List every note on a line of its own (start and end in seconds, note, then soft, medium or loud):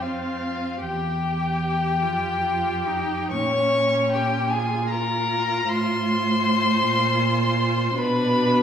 0.00 0.79 F2 soft
0.00 0.78 C4 soft
0.00 0.82 F4 soft
0.00 0.83 F5 medium
0.82 2.04 E2 soft
0.82 2.04 G4 soft
0.82 3.29 G4 medium
0.82 3.30 G5 medium
2.02 3.34 F2 soft
2.02 2.43 F4 soft
2.43 2.89 F4 medium
2.87 3.33 D#4 medium
3.32 5.67 A#2 soft
3.32 4.54 C#4 soft
3.32 4.15 C#5 medium
3.32 4.11 C#6 medium
4.12 4.54 G4 medium
4.12 4.51 G5 medium
4.49 6.82 F4 medium
4.49 4.93 G#4 medium
4.49 4.89 G#5 medium
4.90 5.68 A#4 medium
4.90 5.70 A#5 medium
5.67 6.83 A2 medium
5.67 7.95 C5 medium
5.67 8.00 C6 medium
6.82 7.97 A#2 medium
6.82 7.96 F4 medium
7.97 8.63 B2 medium
7.97 8.63 D4 medium
7.97 8.63 B4 medium
7.97 8.63 B5 medium